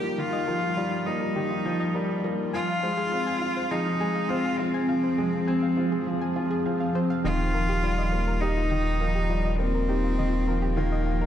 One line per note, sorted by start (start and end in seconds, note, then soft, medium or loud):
0.00 0.18 D#3 medium
0.00 0.47 F3 medium
0.00 0.77 G3 medium
0.00 2.50 G3 medium
0.00 1.07 A#3 medium
0.00 2.50 D#4 medium
0.00 2.50 F4 medium
0.00 0.15 F4 loud
0.00 0.20 G4 loud
0.18 0.46 D#3 medium
0.18 1.08 F4 loud
0.33 0.45 D#5 loud
0.47 0.75 F3 medium
0.47 0.52 A#4 medium
0.62 0.70 G4 medium
0.76 0.94 G3 medium
0.76 0.89 F4 loud
1.06 1.34 A#3 medium
1.06 2.24 D#4 medium
1.06 1.18 D#5 medium
1.20 1.26 A#4 medium
1.36 1.53 D#3 medium
1.36 1.44 G4 medium
1.50 1.62 F4 medium
1.65 1.93 F3 loud
1.80 1.92 D#5 loud
1.95 2.23 G3 medium
1.95 1.99 A#4 medium
2.09 2.17 G4 medium
2.24 2.52 A#3 medium
2.24 2.36 F4 loud
2.53 7.20 F3 medium
2.53 2.70 F3 medium
2.53 7.20 C4 medium
2.53 3.73 F4 loud
2.53 7.20 G#4 medium
2.53 2.65 G#5 loud
2.68 2.73 F5 medium
2.83 3.11 G#3 medium
2.83 2.91 C5 medium
2.97 3.09 G#4 loud
3.12 3.40 C4 medium
3.27 3.39 G#5 loud
3.41 3.58 F4 medium
3.41 3.46 F5 medium
3.56 3.64 C5 medium
3.71 3.99 F3 medium
3.71 4.31 D#4 loud
3.71 3.83 G#4 loud
4.00 4.29 G#3 loud
4.00 4.12 G#5 loud
4.15 4.20 F5 medium
4.29 4.47 C4 medium
4.29 4.61 F4 loud
4.29 4.38 C5 medium
4.45 4.57 G#4 loud
4.59 5.77 C4 medium
4.59 4.87 F4 medium
4.74 4.86 G#5 loud
4.89 5.06 F3 medium
4.89 4.93 F5 medium
5.03 5.11 C5 medium
5.18 5.46 G#3 medium
5.18 5.30 G#4 medium
5.47 5.76 C4 loud
5.47 5.59 G#5 loud
5.62 5.67 F5 medium
5.77 6.05 F4 medium
5.77 5.85 C5 medium
5.92 6.04 G#4 loud
6.06 6.23 F3 medium
6.21 6.33 G#5 loud
6.36 6.53 F4 medium
6.36 6.48 G#4 medium
6.51 6.62 G#4 loud
6.66 6.82 F3 medium
6.66 6.73 F5 medium
6.80 6.92 F5 medium
6.95 7.23 C4 medium
6.95 7.07 C5 loud
7.10 7.22 F5 loud
7.24 11.26 D#1 medium
7.24 7.52 D#3 loud
7.24 11.26 F4 medium
7.24 8.42 F4 loud
7.24 11.26 D#5 medium
7.24 7.32 D#5 medium
7.24 11.26 G5 medium
7.54 7.70 F3 medium
7.54 7.66 A#4 medium
7.69 7.73 G4 loud
7.83 8.00 G3 medium
7.83 7.88 F4 medium
7.98 8.06 D#5 medium
8.12 8.40 A#3 medium
8.27 8.39 A#4 medium
8.40 9.59 D#4 loud
8.40 8.70 D#4 loud
8.40 8.47 G4 loud
8.57 8.61 F4 medium
8.71 8.88 D#3 loud
8.71 8.79 D#5 medium
9.01 9.17 F3 medium
9.01 9.12 A#4 medium
9.15 9.20 G4 loud
9.30 9.58 G3 medium
9.30 9.35 F4 medium
9.45 9.53 D#5 medium
9.58 9.87 A#3 medium
9.58 10.78 C4 loud
9.75 9.86 A#4 medium
9.88 10.16 D#4 medium
9.88 9.94 G4 medium
10.04 10.08 F4 medium
10.18 10.46 D#3 medium
10.18 10.26 D#5 medium
10.47 10.75 F3 medium
10.47 10.59 A#4 medium
10.62 10.67 G4 loud
10.76 11.05 D#3 loud
10.76 11.26 A#3 medium
10.76 10.82 F4 medium
10.92 11.00 D#5 medium
11.07 11.23 F3 medium
11.21 11.26 A#4 medium